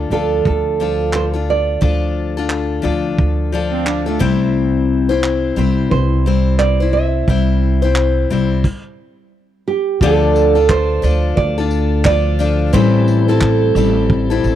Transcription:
0.00 0.10 D4 soft
0.00 0.12 F4 medium
0.00 0.11 A4 medium
0.10 0.42 D2 medium
0.10 0.79 F3 soft
0.10 0.79 D4 medium
0.10 0.80 F4 soft
0.10 0.46 A4 medium
0.10 0.81 A4 medium
0.45 1.78 D2 medium
0.45 1.15 A4 medium
0.45 kick loud
0.80 1.34 F3 medium
0.80 1.35 D4 medium
0.80 1.33 F4 medium
0.80 1.32 A4 medium
1.13 1.24 C5 medium
1.13 clap medium
1.34 1.80 D4 soft
1.34 1.81 F4 soft
1.34 1.82 A4 soft
1.50 2.82 D5 medium
1.81 2.80 D2 medium
1.81 2.36 F3 medium
1.81 2.37 D4 medium
1.81 2.37 F4 medium
1.81 2.36 A4 medium
1.81 kick loud
2.37 2.82 D4 soft
2.37 2.83 F4 medium
2.37 2.83 A4 medium
2.50 clap loud
2.82 3.16 D2 medium
2.82 3.51 F3 medium
2.82 3.52 D4 medium
2.82 3.52 F4 medium
2.82 3.53 A4 medium
3.18 4.17 D2 medium
3.18 kick loud
3.52 4.07 F3 medium
3.52 4.07 D4 medium
3.52 4.06 F4 medium
3.52 4.05 A4 medium
3.71 3.88 C4 medium
3.86 4.06 D4 medium
3.86 clap loud
4.06 4.39 A3 medium
4.06 4.20 D4 soft
4.06 4.20 F4 soft
4.06 4.20 A4 medium
4.19 5.53 C2 medium
4.19 5.09 C3 medium
4.19 5.09 G3 medium
4.19 5.09 C4 medium
4.19 5.09 E4 medium
4.19 5.08 C5 medium
4.19 kick medium
5.09 5.56 C4 soft
5.09 5.57 E4 medium
5.09 5.57 C5 medium
5.23 clap loud
5.56 5.89 C2 medium
5.56 6.25 G3 medium
5.56 6.26 C4 medium
5.56 6.26 E4 medium
5.56 5.90 C5 medium
5.56 6.26 C5 medium
5.91 7.24 C2 medium
5.91 6.58 C5 medium
5.91 kick loud
6.26 6.80 G3 medium
6.26 6.81 C4 medium
6.26 6.81 E4 medium
6.26 6.79 C5 medium
6.59 6.91 D5 medium
6.59 clap medium
6.80 7.28 C4 soft
6.80 7.29 E4 soft
6.80 7.28 C5 soft
6.93 8.26 E5 medium
7.28 8.26 C2 medium
7.28 7.83 G3 medium
7.28 7.83 C4 medium
7.28 7.82 E4 medium
7.28 7.81 C5 medium
7.28 kick loud
7.82 8.29 C4 soft
7.82 8.30 E4 medium
7.82 8.30 C5 medium
7.95 clap loud
8.30 8.62 C2 medium
8.30 8.64 G3 medium
8.30 8.65 C4 medium
8.30 8.65 E4 medium
8.30 8.65 C5 medium
8.64 kick loud
8.64 crash medium
9.68 9.99 G4 medium
10.01 10.99 D2 medium
10.01 12.71 D3 medium
10.01 10.56 D3 medium
10.01 10.56 F3 medium
10.01 14.55 A3 medium
10.01 10.56 D4 medium
10.01 12.71 F4 medium
10.01 10.55 F4 medium
10.01 10.72 A4 loud
10.01 10.54 A4 medium
10.01 kick loud
10.36 tambourine medium
10.55 11.02 D4 soft
10.55 11.03 F4 soft
10.55 11.03 A4 medium
10.69 11.34 C5 medium
10.69 kick loud
10.69 clap loud
11.02 11.35 D2 medium
11.02 11.57 F3 medium
11.02 11.58 D4 medium
11.02 11.57 F4 medium
11.02 11.57 A4 medium
11.02 tambourine medium
11.37 12.69 D2 loud
11.37 12.04 D5 loud
11.37 kick loud
11.58 12.04 D4 soft
11.58 12.04 F4 medium
11.58 12.05 A4 medium
11.71 tambourine medium
12.04 12.38 F3 medium
12.04 12.39 D4 medium
12.04 12.39 F4 medium
12.04 12.40 A4 medium
12.04 12.73 D5 loud
12.04 kick loud
12.04 clap loud
12.39 12.73 F3 medium
12.39 12.74 D4 medium
12.39 12.74 F4 medium
12.39 12.74 A4 medium
12.39 tambourine medium
12.73 13.72 A1 loud
12.73 13.28 A2 medium
12.73 13.28 E3 medium
12.73 13.28 G3 medium
12.73 13.28 C4 loud
12.73 14.55 C4 medium
12.73 13.28 E4 medium
12.73 14.55 G4 medium
12.73 13.27 A4 medium
12.73 13.29 C5 loud
12.73 kick loud
13.08 tambourine medium
13.28 13.75 G3 soft
13.28 13.76 C4 medium
13.28 13.76 E4 medium
13.28 13.76 A4 medium
13.28 14.55 A4 medium
13.41 kick loud
13.41 clap loud
13.75 14.39 A1 loud
13.75 14.31 G3 medium
13.75 14.30 C4 medium
13.75 14.30 E4 medium
13.75 14.29 A4 medium
13.75 tambourine medium
14.10 kick loud
14.30 14.55 G3 soft
14.30 14.55 C4 medium
14.30 14.55 E4 medium
14.30 14.55 A4 medium
14.44 14.55 A1 medium
14.44 tambourine medium

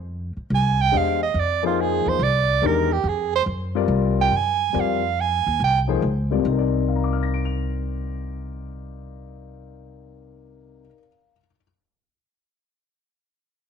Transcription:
0.00 0.32 F2 medium
0.37 muted upright bass stroke soft
0.50 0.90 C2 medium
0.55 0.83 G#5 medium
0.81 0.99 G5 loud
0.92 1.32 E2 medium
0.92 1.18 G#3 medium
0.92 1.18 D4 medium
0.92 1.18 G4 soft
0.92 1.18 C5 medium
0.92 1.18 D#5 medium
0.97 1.22 F5 medium
1.23 1.41 D#5 medium
1.34 2.02 F2 medium
1.40 1.66 D5 medium
1.63 2.17 F3 medium
1.63 2.17 A#3 medium
1.63 2.17 D#4 medium
1.63 1.83 F4 medium
1.63 2.17 G#4 medium
1.63 2.17 C5 medium
1.81 2.10 G#4 medium
2.06 2.19 E2 medium
2.06 2.25 C5 medium
2.19 2.59 C2 medium
2.19 2.68 D5 loud
2.62 3.02 E2 medium
2.62 2.88 D#3 medium
2.62 2.88 G#3 medium
2.62 2.88 D4 medium
2.62 2.88 G4 medium
2.62 2.89 A#4 medium
2.67 2.94 A#4 medium
2.93 3.10 G4 medium
3.04 3.44 F2 medium
3.09 3.35 G#4 medium
3.36 3.43 C5 loud
3.46 3.86 F#2 medium
3.75 4.29 G3 medium
3.75 4.29 C4 medium
3.75 4.29 F4 medium
3.75 4.30 A#4 medium
3.75 4.30 D5 medium
3.88 4.29 C2 medium
4.21 4.38 G5 loud
4.31 4.71 F#2 medium
4.37 4.82 G#5 medium
4.73 5.42 F2 medium
4.73 5.00 G3 medium
4.73 5.00 C4 soft
4.73 5.00 F4 medium
4.73 5.00 A#4 medium
4.73 5.00 D5 medium
4.80 5.23 F5 medium
5.21 5.62 G#5 medium
5.47 5.59 D#2 medium
5.60 6.00 C2 medium
5.64 5.80 G5 medium
5.87 6.01 F3 medium
5.87 6.01 A#3 medium
5.87 6.01 D#4 medium
5.87 6.01 G#4 medium
5.87 6.01 C5 medium
6.02 6.42 C#2 medium
6.31 10.81 C3 medium
6.31 6.44 G3 medium
6.31 6.38 C4 soft
6.31 6.44 F4 medium
6.31 6.44 A#4 soft
6.31 6.44 D5 medium
6.39 10.87 C4 medium
6.45 10.88 C2 medium
6.45 10.93 D#4 medium
6.52 11.00 A#4 medium
6.58 11.06 D5 medium
6.88 11.32 F5 soft
6.96 11.36 A#5 soft
7.04 11.40 D6 soft
7.13 11.45 F6 soft
7.23 11.50 A#6 soft
7.34 11.55 D7 soft
7.45 11.61 F7 soft

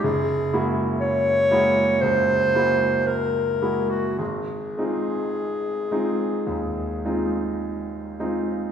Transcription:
0.04 0.51 F#1 medium
0.04 0.76 G#4 medium
0.53 1.47 G#3 soft
0.53 1.47 A#3 soft
0.53 1.48 E4 soft
0.53 1.48 F#4 medium
1.01 2.03 C#5 loud
1.51 1.98 G#3 medium
1.51 1.98 A#3 medium
1.51 1.98 E4 soft
1.51 1.99 F#4 soft
2.01 2.53 C#2 medium
2.01 3.08 C5 loud
2.55 3.58 G#3 soft
2.55 3.59 A#3 soft
2.55 3.59 E4 soft
2.55 3.59 F#4 soft
3.07 3.92 A#4 medium
3.62 4.15 G#3 soft
3.62 4.16 A#3 soft
3.62 4.16 E4 soft
3.62 4.16 F#4 soft
3.90 4.19 F#4 medium
4.19 4.76 G#1 soft
4.19 7.59 G#4 medium
4.78 5.87 G#3 soft
4.78 5.88 C4 soft
4.78 5.88 D#4 soft
4.78 5.88 F4 soft
5.91 6.44 G#3 soft
5.91 6.44 C4 soft
5.91 6.44 D#4 soft
5.91 6.44 F4 soft
6.47 7.03 D#2 soft
7.05 8.16 G#3 soft
7.05 8.16 C4 soft
7.05 8.16 D#4 soft
7.05 8.16 F4 soft
8.20 8.72 G#3 soft
8.20 8.72 C4 soft
8.20 8.72 D#4 soft
8.20 8.72 F4 soft

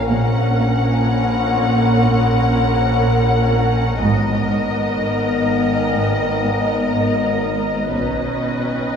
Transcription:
0.00 0.11 A#1 medium
0.00 0.11 F5 soft
0.00 0.11 A#5 soft
0.11 1.04 A#1 soft
0.11 3.98 A#1 medium
0.11 3.97 A#2 medium
0.11 0.40 A#2 medium
0.11 3.97 C#4 soft
0.11 3.97 A#4 medium
0.11 3.98 C#5 soft
0.11 3.97 F#5 medium
0.11 4.02 F#5 soft
0.11 3.98 A#5 soft
0.60 0.89 A#2 soft
1.08 1.37 A#2 soft
1.57 1.86 A#2 soft
2.06 2.35 A#2 medium
2.54 2.84 A#2 soft
3.03 3.33 A#2 soft
3.52 3.82 A#2 soft
4.00 7.95 G#1 medium
4.00 4.94 G#1 soft
4.00 4.29 G#2 medium
4.00 7.91 G#2 medium
4.00 7.91 B3 soft
4.00 7.96 B3 soft
4.00 7.91 A#4 soft
4.00 7.91 D#5 medium
4.00 7.94 D#5 soft
4.00 7.91 A#5 soft
4.50 4.79 G#2 soft
4.98 5.27 G#2 soft
5.46 5.76 G#2 soft
5.95 6.25 G#2 soft
6.45 6.74 G#2 soft
6.94 7.24 G#2 soft
7.44 7.74 G#2 soft
7.94 8.96 B1 medium
7.94 8.92 B1 soft
7.94 8.96 B2 soft
7.94 8.25 B2 soft
7.94 8.96 C#4 soft
7.94 8.96 B4 soft
7.94 8.96 C#5 soft
7.94 8.96 D#5 soft
7.94 8.96 B5 soft
8.45 8.76 B2 soft

